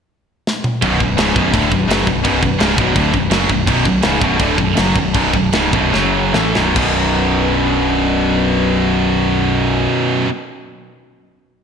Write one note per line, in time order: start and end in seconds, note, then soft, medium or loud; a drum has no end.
0.47 snare medium
0.64 mid tom medium
0.82 0.99 B0 medium
0.82 1.00 B1 loud
0.82 1.00 F#2 loud
0.82 1.00 B2 loud
0.82 6.71 F#3 medium
0.82 5.89 D4 medium
0.82 3.64 B4 medium
0.82 kick loud
0.82 crash medium
1.00 1.17 B0 medium
1.00 1.15 B1 medium
1.00 1.15 F#2 medium
1.00 kick medium
1.17 1.34 C#1 loud
1.17 1.34 C#2 loud
1.17 1.35 G#2 loud
1.17 1.35 C#3 medium
1.17 snare loud
1.17 crash medium
1.34 1.52 B0 medium
1.34 1.52 B1 medium
1.34 1.52 F#2 loud
1.34 1.53 B2 loud
1.34 kick loud
1.52 1.70 D1 loud
1.52 1.70 D2 loud
1.52 1.70 A2 loud
1.52 1.70 D3 loud
1.52 kick loud
1.52 crash medium
1.70 1.87 B0 medium
1.70 1.85 B1 medium
1.70 1.85 F#2 medium
1.70 kick medium
1.87 2.04 F#1 medium
1.87 2.05 F#2 medium
1.87 2.05 C#3 medium
1.87 2.06 F#3 medium
1.87 crash medium
1.91 snare loud
2.06 2.23 B0 medium
2.06 2.20 B1 medium
2.06 2.20 F#2 medium
2.06 kick medium
2.23 2.41 B0 medium
2.23 2.40 B1 loud
2.23 2.40 F#2 loud
2.23 2.41 B2 loud
2.23 kick loud
2.23 crash medium
2.41 2.59 B0 medium
2.41 2.56 B1 medium
2.41 2.56 F#2 medium
2.41 kick medium
2.59 2.76 C#1 loud
2.59 2.76 C#2 medium
2.59 2.77 G#2 loud
2.59 2.77 C#3 loud
2.59 snare loud
2.59 crash medium
2.77 2.94 B0 medium
2.77 2.94 B1 loud
2.77 2.95 F#2 medium
2.77 2.95 B2 loud
2.77 kick loud
2.95 3.12 D1 loud
2.95 3.13 D2 loud
2.95 3.13 A2 loud
2.95 3.13 D3 loud
2.95 kick loud
2.95 crash medium
3.14 3.29 B0 medium
3.14 3.28 B1 medium
3.14 3.28 F#2 medium
3.14 kick medium
3.30 3.47 F#1 loud
3.30 3.49 F#2 medium
3.30 3.50 C#3 medium
3.30 snare loud
3.30 crash medium
3.34 3.50 F#3 loud
3.49 3.66 B0 medium
3.49 3.64 B1 medium
3.49 3.64 F#2 medium
3.49 kick loud
3.65 3.84 B0 loud
3.65 3.85 B1 loud
3.65 3.85 F#2 loud
3.65 5.90 A4 loud
3.65 kick loud
3.65 crash medium
3.69 3.86 B2 loud
3.85 4.02 B0 loud
3.85 4.00 B1 medium
3.85 4.00 F#2 medium
3.85 kick medium
4.02 4.20 C#1 medium
4.02 4.20 C#2 medium
4.02 4.21 G#2 medium
4.02 4.21 C#3 loud
4.02 snare loud
4.02 crash medium
4.21 4.38 B0 medium
4.21 4.39 B1 medium
4.21 4.40 F#2 loud
4.21 4.40 B2 loud
4.21 kick loud
4.40 4.57 D1 loud
4.40 4.57 D2 loud
4.40 4.58 A2 loud
4.40 4.58 D3 loud
4.40 kick loud
4.40 crash medium
4.58 4.75 B0 medium
4.58 4.73 B1 medium
4.58 4.74 F#2 medium
4.58 kick medium
4.77 4.95 F#1 loud
4.77 4.95 F#2 medium
4.77 4.96 C#3 medium
4.77 4.96 F#3 loud
4.77 snare loud
4.77 crash medium
4.96 5.13 B0 medium
4.96 5.11 B1 medium
4.96 5.11 F#2 medium
4.96 kick loud
5.14 5.33 B0 medium
5.14 5.33 B1 loud
5.14 5.34 F#2 loud
5.14 5.34 B2 loud
5.14 kick loud
5.14 crash medium
5.33 5.52 B0 medium
5.33 5.50 B1 medium
5.33 5.50 F#2 medium
5.33 kick medium
5.53 5.72 C#1 medium
5.53 5.72 C#2 medium
5.53 5.72 G#2 loud
5.53 5.73 C#3 loud
5.53 snare loud
5.53 crash medium
5.72 5.92 B0 medium
5.72 5.91 B1 loud
5.72 5.90 F#2 loud
5.72 5.93 B2 loud
5.72 kick loud
5.92 6.32 F#1 loud
5.92 6.32 F#2 medium
5.92 6.33 C#3 loud
5.92 6.33 F#3 loud
5.92 6.33 C#4 medium
5.92 6.33 C#5 medium
5.92 snare medium
6.31 6.54 A2 medium
6.31 6.54 E3 medium
6.31 6.71 D4 medium
6.31 6.72 B4 medium
6.31 snare medium
6.35 6.54 A1 medium
6.35 6.55 A3 loud
6.54 6.75 B0 medium
6.54 6.72 B1 loud
6.54 6.75 F#2 loud
6.54 6.76 B2 loud
6.54 snare medium
6.72 10.23 B1 loud
6.72 10.26 F#2 loud
6.72 9.82 F#3 medium
6.72 9.82 D4 medium
6.72 9.82 B4 medium
6.72 kick loud
6.72 crash loud
6.77 9.86 B0 loud
6.77 10.28 B2 loud